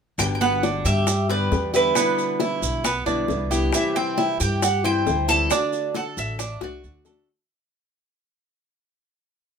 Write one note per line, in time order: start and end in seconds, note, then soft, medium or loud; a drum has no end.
0.18 0.81 G1 medium
0.18 1.05 B2 medium
0.18 1.06 D3 medium
0.18 1.07 G3 medium
0.18 1.07 B3 medium
0.18 1.07 G4 medium
0.18 0.25 G5 loud
0.18 high bongo medium
0.18 maracas medium
0.35 0.41 G5 medium
0.41 0.62 B3 medium
0.41 0.85 F#5 loud
0.41 high bongo soft
0.41 maracas soft
0.63 0.85 D4 medium
0.63 high bongo medium
0.63 maracas soft
0.85 1.48 G2 loud
0.85 1.28 G4 medium
0.85 1.27 E5 loud
0.85 high bongo soft
0.85 maracas medium
1.07 muted nylon-string guitar stroke soft
1.07 high bongo medium
1.07 maracas medium
1.29 1.50 D3 medium
1.29 1.51 G3 medium
1.29 1.51 B3 medium
1.29 1.51 G4 medium
1.29 1.73 B4 medium
1.29 1.71 D5 medium
1.29 maracas soft
1.51 1.91 E2 medium
1.51 1.73 D3 soft
1.51 1.73 G3 medium
1.51 1.73 B3 soft
1.51 1.72 G4 medium
1.51 high bongo soft
1.51 low bongo medium
1.51 maracas soft
1.74 1.94 D3 medium
1.74 1.95 G3 medium
1.74 1.95 B3 medium
1.74 1.95 E4 medium
1.74 1.95 G4 medium
1.74 2.60 B4 medium
1.74 high bongo soft
1.74 maracas medium
1.94 2.83 B2 medium
1.94 2.83 D3 medium
1.94 2.84 G3 medium
1.94 2.39 B3 medium
1.94 2.83 B3 medium
1.94 high bongo medium
1.94 maracas medium
1.98 2.84 E4 medium
2.18 high bongo soft
2.18 maracas soft
2.40 2.83 E4 medium
2.40 high bongo medium
2.40 maracas soft
2.62 3.04 B1 loud
2.62 high bongo soft
2.62 maracas medium
2.84 3.06 B3 medium
2.84 muted nylon-string guitar stroke medium
2.84 high bongo medium
2.84 maracas medium
3.06 3.28 B1 medium
3.06 3.27 D3 medium
3.06 3.28 G3 medium
3.06 3.28 B3 medium
3.06 3.50 D4 medium
3.06 3.28 E4 medium
3.06 maracas soft
3.28 3.68 C2 medium
3.28 3.50 D3 soft
3.28 3.51 G3 medium
3.28 3.50 B3 medium
3.28 3.49 E4 medium
3.28 high bongo soft
3.28 low bongo medium
3.28 maracas soft
3.51 3.73 D3 medium
3.51 3.73 G3 medium
3.51 3.73 B3 medium
3.51 3.72 E4 medium
3.51 3.94 G4 medium
3.51 high bongo soft
3.51 maracas medium
3.72 4.61 C3 medium
3.72 4.61 E3 medium
3.72 4.62 G3 medium
3.72 4.62 C4 medium
3.72 4.62 E4 medium
3.72 3.95 E5 medium
3.72 high bongo medium
3.72 maracas medium
3.96 4.17 C4 medium
3.96 4.40 G5 loud
3.96 high bongo soft
3.96 maracas soft
4.18 4.39 E4 medium
4.18 high bongo medium
4.18 maracas soft
4.40 5.03 G2 medium
4.40 4.83 G4 medium
4.40 4.62 G5 medium
4.40 high bongo soft
4.40 maracas medium
4.62 4.83 F#5 medium
4.62 muted nylon-string guitar stroke medium
4.62 high bongo medium
4.62 maracas medium
4.84 5.05 E3 medium
4.84 5.06 G3 medium
4.84 5.06 C4 medium
4.84 5.05 E4 medium
4.84 5.27 C5 medium
4.84 5.26 G5 loud
4.84 maracas soft
5.06 5.46 D2 medium
5.06 5.28 E3 medium
5.06 5.28 G3 soft
5.06 5.28 C4 soft
5.06 5.27 E4 medium
5.06 high bongo soft
5.06 low bongo medium
5.06 maracas soft
5.28 5.49 E3 medium
5.28 5.50 G3 medium
5.28 5.50 C4 medium
5.28 5.50 E4 medium
5.28 5.50 A4 medium
5.28 5.91 A5 loud
5.28 high bongo soft
5.28 maracas medium
5.50 6.38 D3 medium
5.50 6.39 A3 medium
5.50 5.94 D4 medium
5.50 6.39 D4 medium
5.50 6.39 F#4 medium
5.50 high bongo medium
5.50 maracas medium
5.73 high bongo soft
5.73 maracas soft
5.95 6.38 A4 medium
5.95 6.02 F#5 medium
5.95 high bongo medium
5.95 maracas soft
6.17 6.58 A1 loud
6.17 6.59 E5 medium
6.17 high bongo soft
6.17 maracas medium
6.39 6.61 D4 medium
6.39 muted nylon-string guitar stroke medium
6.39 high bongo medium
6.39 maracas medium
6.61 6.82 C2 medium
6.61 6.83 A3 medium
6.61 6.83 D4 medium
6.61 6.82 F#4 medium
6.61 7.04 F#4 medium
6.61 7.04 D5 medium
6.61 high bongo medium
6.61 maracas soft
6.83 7.23 D2 medium
6.83 7.05 D3 medium
6.83 7.05 A3 soft
6.83 7.05 D4 medium
6.83 7.05 F#4 medium
6.83 maracas soft
7.05 7.28 A3 medium
7.05 7.28 D4 medium
7.05 7.27 F#4 medium
7.05 7.27 A4 medium
7.05 low bongo medium
7.05 maracas medium